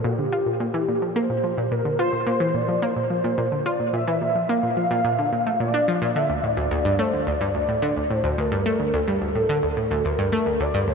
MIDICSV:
0, 0, Header, 1, 3, 480
1, 0, Start_track
1, 0, Tempo, 555556
1, 1482, Time_signature, 4, 2, 24, 8
1, 9453, End_track
2, 0, Start_track
2, 0, Title_t, "Analog synth lead"
2, 0, Program_c, 0, 81
2, 40, Note_on_c, 0, 67, 91
2, 999, Note_on_c, 0, 72, 96
2, 1012, Note_off_c, 0, 67, 0
2, 1476, Note_on_c, 0, 70, 97
2, 1489, Note_off_c, 0, 72, 0
2, 1718, Note_off_c, 0, 70, 0
2, 1722, Note_on_c, 0, 72, 107
2, 2201, Note_on_c, 0, 74, 95
2, 2214, Note_off_c, 0, 72, 0
2, 2440, Note_on_c, 0, 72, 100
2, 2453, Note_off_c, 0, 74, 0
2, 3159, Note_on_c, 0, 74, 95
2, 3172, Note_off_c, 0, 72, 0
2, 3396, Note_off_c, 0, 74, 0
2, 3402, Note_on_c, 0, 76, 106
2, 3881, Note_on_c, 0, 77, 116
2, 3894, Note_off_c, 0, 76, 0
2, 4835, Note_off_c, 0, 77, 0
2, 4840, Note_on_c, 0, 74, 106
2, 5321, Note_on_c, 0, 76, 108
2, 5334, Note_off_c, 0, 74, 0
2, 5561, Note_on_c, 0, 74, 108
2, 5574, Note_off_c, 0, 76, 0
2, 6041, Note_on_c, 0, 72, 95
2, 6054, Note_off_c, 0, 74, 0
2, 6275, Note_off_c, 0, 72, 0
2, 6280, Note_on_c, 0, 74, 106
2, 7001, Note_on_c, 0, 72, 92
2, 7014, Note_off_c, 0, 74, 0
2, 7245, Note_on_c, 0, 70, 99
2, 7258, Note_off_c, 0, 72, 0
2, 7724, Note_on_c, 0, 69, 95
2, 7737, Note_off_c, 0, 70, 0
2, 8686, Note_on_c, 0, 70, 93
2, 8699, Note_off_c, 0, 69, 0
2, 9158, Note_off_c, 0, 70, 0
2, 9163, Note_on_c, 0, 74, 102
2, 9405, Note_on_c, 0, 72, 92
2, 9418, Note_off_c, 0, 74, 0
2, 9453, Note_off_c, 0, 72, 0
2, 9453, End_track
3, 0, Start_track
3, 0, Title_t, "Synth arpeggio sound"
3, 0, Program_c, 1, 84
3, 39, Note_on_c, 1, 46, 100
3, 124, Note_off_c, 1, 46, 0
3, 161, Note_on_c, 1, 50, 70
3, 211, Note_off_c, 1, 50, 0
3, 280, Note_on_c, 1, 65, 93
3, 395, Note_off_c, 1, 65, 0
3, 400, Note_on_c, 1, 46, 73
3, 510, Note_off_c, 1, 46, 0
3, 520, Note_on_c, 1, 46, 97
3, 571, Note_off_c, 1, 46, 0
3, 639, Note_on_c, 1, 52, 98
3, 724, Note_off_c, 1, 52, 0
3, 763, Note_on_c, 1, 46, 77
3, 846, Note_off_c, 1, 46, 0
3, 881, Note_on_c, 1, 53, 73
3, 932, Note_off_c, 1, 53, 0
3, 1001, Note_on_c, 1, 58, 97
3, 1085, Note_off_c, 1, 58, 0
3, 1120, Note_on_c, 1, 46, 74
3, 1171, Note_off_c, 1, 46, 0
3, 1241, Note_on_c, 1, 53, 75
3, 1325, Note_off_c, 1, 53, 0
3, 1362, Note_on_c, 1, 46, 91
3, 1445, Note_off_c, 1, 46, 0
3, 1481, Note_on_c, 1, 46, 94
3, 1565, Note_off_c, 1, 46, 0
3, 1600, Note_on_c, 1, 50, 75
3, 1651, Note_off_c, 1, 50, 0
3, 1721, Note_on_c, 1, 65, 94
3, 1835, Note_off_c, 1, 65, 0
3, 1838, Note_on_c, 1, 46, 73
3, 1948, Note_off_c, 1, 46, 0
3, 1959, Note_on_c, 1, 46, 100
3, 2010, Note_off_c, 1, 46, 0
3, 2076, Note_on_c, 1, 52, 94
3, 2163, Note_off_c, 1, 52, 0
3, 2197, Note_on_c, 1, 46, 72
3, 2283, Note_off_c, 1, 46, 0
3, 2319, Note_on_c, 1, 53, 74
3, 2370, Note_off_c, 1, 53, 0
3, 2440, Note_on_c, 1, 58, 97
3, 2524, Note_off_c, 1, 58, 0
3, 2559, Note_on_c, 1, 46, 75
3, 2610, Note_off_c, 1, 46, 0
3, 2680, Note_on_c, 1, 53, 70
3, 2764, Note_off_c, 1, 53, 0
3, 2800, Note_on_c, 1, 46, 94
3, 2885, Note_off_c, 1, 46, 0
3, 2920, Note_on_c, 1, 46, 93
3, 3004, Note_off_c, 1, 46, 0
3, 3040, Note_on_c, 1, 50, 72
3, 3091, Note_off_c, 1, 50, 0
3, 3161, Note_on_c, 1, 65, 100
3, 3275, Note_off_c, 1, 65, 0
3, 3280, Note_on_c, 1, 46, 72
3, 3389, Note_off_c, 1, 46, 0
3, 3399, Note_on_c, 1, 46, 94
3, 3450, Note_off_c, 1, 46, 0
3, 3521, Note_on_c, 1, 52, 101
3, 3605, Note_off_c, 1, 52, 0
3, 3641, Note_on_c, 1, 46, 73
3, 3725, Note_off_c, 1, 46, 0
3, 3762, Note_on_c, 1, 53, 68
3, 3812, Note_off_c, 1, 53, 0
3, 3882, Note_on_c, 1, 58, 98
3, 3965, Note_off_c, 1, 58, 0
3, 4002, Note_on_c, 1, 46, 69
3, 4052, Note_off_c, 1, 46, 0
3, 4120, Note_on_c, 1, 53, 70
3, 4204, Note_off_c, 1, 53, 0
3, 4240, Note_on_c, 1, 46, 99
3, 4324, Note_off_c, 1, 46, 0
3, 4359, Note_on_c, 1, 46, 95
3, 4444, Note_off_c, 1, 46, 0
3, 4480, Note_on_c, 1, 50, 76
3, 4531, Note_off_c, 1, 50, 0
3, 4601, Note_on_c, 1, 46, 75
3, 4715, Note_off_c, 1, 46, 0
3, 4721, Note_on_c, 1, 57, 76
3, 4772, Note_off_c, 1, 57, 0
3, 4837, Note_on_c, 1, 46, 78
3, 4953, Note_off_c, 1, 46, 0
3, 4958, Note_on_c, 1, 62, 97
3, 5043, Note_off_c, 1, 62, 0
3, 5080, Note_on_c, 1, 53, 95
3, 5195, Note_off_c, 1, 53, 0
3, 5199, Note_on_c, 1, 46, 97
3, 5284, Note_off_c, 1, 46, 0
3, 5320, Note_on_c, 1, 50, 94
3, 5404, Note_off_c, 1, 50, 0
3, 5439, Note_on_c, 1, 38, 74
3, 5491, Note_off_c, 1, 38, 0
3, 5559, Note_on_c, 1, 45, 71
3, 5644, Note_off_c, 1, 45, 0
3, 5678, Note_on_c, 1, 38, 92
3, 5764, Note_off_c, 1, 38, 0
3, 5796, Note_on_c, 1, 38, 100
3, 5883, Note_off_c, 1, 38, 0
3, 5920, Note_on_c, 1, 43, 98
3, 6004, Note_off_c, 1, 43, 0
3, 6039, Note_on_c, 1, 57, 95
3, 6154, Note_off_c, 1, 57, 0
3, 6162, Note_on_c, 1, 38, 73
3, 6271, Note_off_c, 1, 38, 0
3, 6282, Note_on_c, 1, 38, 95
3, 6332, Note_off_c, 1, 38, 0
3, 6401, Note_on_c, 1, 43, 97
3, 6485, Note_off_c, 1, 43, 0
3, 6519, Note_on_c, 1, 38, 74
3, 6604, Note_off_c, 1, 38, 0
3, 6640, Note_on_c, 1, 45, 73
3, 6691, Note_off_c, 1, 45, 0
3, 6758, Note_on_c, 1, 50, 94
3, 6843, Note_off_c, 1, 50, 0
3, 6880, Note_on_c, 1, 38, 76
3, 6931, Note_off_c, 1, 38, 0
3, 7002, Note_on_c, 1, 45, 73
3, 7085, Note_off_c, 1, 45, 0
3, 7118, Note_on_c, 1, 38, 97
3, 7203, Note_off_c, 1, 38, 0
3, 7242, Note_on_c, 1, 38, 99
3, 7325, Note_off_c, 1, 38, 0
3, 7360, Note_on_c, 1, 43, 96
3, 7444, Note_off_c, 1, 43, 0
3, 7481, Note_on_c, 1, 57, 95
3, 7595, Note_off_c, 1, 57, 0
3, 7600, Note_on_c, 1, 38, 73
3, 7709, Note_off_c, 1, 38, 0
3, 7720, Note_on_c, 1, 38, 100
3, 7771, Note_off_c, 1, 38, 0
3, 7841, Note_on_c, 1, 43, 95
3, 7925, Note_off_c, 1, 43, 0
3, 7960, Note_on_c, 1, 38, 69
3, 8044, Note_off_c, 1, 38, 0
3, 8080, Note_on_c, 1, 45, 75
3, 8131, Note_off_c, 1, 45, 0
3, 8202, Note_on_c, 1, 50, 101
3, 8285, Note_off_c, 1, 50, 0
3, 8321, Note_on_c, 1, 38, 77
3, 8371, Note_off_c, 1, 38, 0
3, 8441, Note_on_c, 1, 45, 70
3, 8525, Note_off_c, 1, 45, 0
3, 8560, Note_on_c, 1, 38, 98
3, 8644, Note_off_c, 1, 38, 0
3, 8682, Note_on_c, 1, 38, 94
3, 8765, Note_off_c, 1, 38, 0
3, 8801, Note_on_c, 1, 43, 97
3, 8885, Note_off_c, 1, 43, 0
3, 8920, Note_on_c, 1, 57, 103
3, 9035, Note_off_c, 1, 57, 0
3, 9038, Note_on_c, 1, 38, 76
3, 9148, Note_off_c, 1, 38, 0
3, 9158, Note_on_c, 1, 38, 96
3, 9210, Note_off_c, 1, 38, 0
3, 9280, Note_on_c, 1, 43, 103
3, 9364, Note_off_c, 1, 43, 0
3, 9398, Note_on_c, 1, 38, 73
3, 9453, Note_off_c, 1, 38, 0
3, 9453, End_track
0, 0, End_of_file